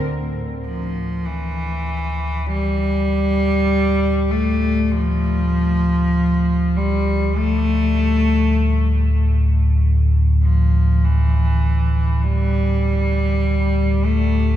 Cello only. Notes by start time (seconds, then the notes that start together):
0.66 F3
1.26 E3
2.47 G3
4.30 A3
4.91 F3
6.77 G3
7.38 A3
10.42 F3
11.04 E3
12.23 G3
14.05 A3